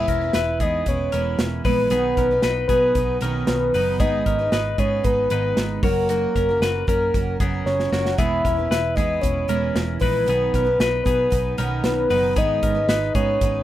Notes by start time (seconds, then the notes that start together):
Already playing: E3 G#3 B3 E4 B4 E5
0.08 E1 C#4 A#4, kick, closed hi-hat
0.21 B3 E4 B4
0.33 E1 E4 B4, snare, closed hi-hat
0.60 E2 G#3 B3 E4 G#4 B4 D#5, kick, closed hi-hat
0.86 E1 G#3 B3 E4 B4 C#5, kick, closed hi-hat
1.12 E1 E3 G#3 B3 C#4 E4 A#4 B4, closed hi-hat
1.39 E1, snare, closed hi-hat
1.65 A#1 E3 G#3 B3 D#4 E4 B4, kick, open hi-hat
1.90 B1 B2 D#3 F#3 B3 D#4 G#4 B4, closed hi-hat
2.17 B1 C#4 A#4, kick, snare, closed hi-hat
2.31 F#3 B3 D#4 B4
2.42 B1 D#4 B4, snare, closed hi-hat
2.68 B2 F#3 B3 G#4 B4, kick, closed hi-hat
2.72 D#4 B4
2.95 B1 F#3 B3 D#4 B4, kick, closed hi-hat
3.21 B1 B2 D#3 F#3 B3 C#4 D#4 A#4 B4, closed hi-hat
3.47 B1 B4, snare, closed hi-hat
3.74 F#1 B2 D#3 F#3 B3 D#4 B4, open hi-hat
3.99 G#1 G#2 D#3 G#3 B3 D#4 G#4 B4 D#5, kick, closed hi-hat
4.26 G#1 C#4 A#4, kick, closed hi-hat
4.39 G#3 B3 D#4 B4
4.52 G#1 D#4 B4, snare, closed hi-hat
4.78 G#2 G#3 B3 D#4 G#4 B4 C#5, kick, closed hi-hat
5.04 G#1 G#3 B3 D#4 B4, kick, closed hi-hat
5.30 G#1 G#2 D#3 G#3 B3 D#4 B4, closed hi-hat
5.57 G#1, snare, closed hi-hat
5.83 F#1 F#3 C#4 F#4 A#4 C#5, kick, open hi-hat
6.09 F#3 A#3 C#4 F#4 A#4, closed hi-hat
6.36 F#1 C#4 A#4, kick, snare, closed hi-hat
6.49 C#4 F#4 A#4
6.61 F#1 F#4 B4, snare, closed hi-hat
6.87 F#2 F#3 C#4 F#4 A#4, kick, closed hi-hat
7.14 F#1 F#3 C#4 F#4 A#4, kick, closed hi-hat
7.40 F#1 F#3 B3 C#4 F#4 G#4 A#4, kick, closed hi-hat
7.66 F#1 C#5, snare
7.80 snare
7.92 F#1 F#3 A#3 C#4 F#4 A#4, snare
8.06 snare
8.18 E1 E3 G#3 B3 E4 G#4 B4 E5, kick, closed hi-hat
8.45 E1 C#4 A#4, kick, snare, closed hi-hat
8.57 B3 E4 B4
8.71 E1 E4 B4, snare, closed hi-hat
8.95 E2 G#3 B3 E4 G#4 B4 D#5, kick, closed hi-hat
9.21 E1 G#3 B3 E4 B4 C#5, kick, closed hi-hat
9.48 E1 E3 G#3 B3 C#4 E4 A#4 B4, closed hi-hat
9.75 E1, snare, closed hi-hat
9.99 A#1 E3 G#3 B3 E4 B4, kick, open hi-hat
10.04 D#4
10.25 B1 B2 D#3 F#3 B3 D#4 B4, closed hi-hat
10.29 B3 G#4
10.54 B1 C#4 A#4, kick, snare, closed hi-hat
10.64 F#3 B3 D#4 B4
10.79 B1 D#4 B4, snare, closed hi-hat
11.04 B2 F#3 B3 D#4 G#4 B4, kick, closed hi-hat
11.30 B1 F#3 B3 D#4 B4, kick, closed hi-hat
11.58 B1 B2 D#3 F#3 B3 C#4 D#4 A#4 B4, closed hi-hat
11.84 B1 B4, snare, closed hi-hat
12.10 F#1 B2 D#3 F#3 B3 D#4 B4, open hi-hat
12.36 G#1 G#2 D#3 G#3 B3 D#4 G#4 B4 D#5, kick, closed hi-hat
12.63 G#1 C#4 A#4, kick, closed hi-hat
12.75 G#3 B3 D#4 B4
12.88 G#1 D#4 B4, snare, closed hi-hat
13.14 G#2 G#3 B3 D#4 G#4 B4 C#5, kick, closed hi-hat
13.41 G#1 G#3 B3 D#4 B4, kick, closed hi-hat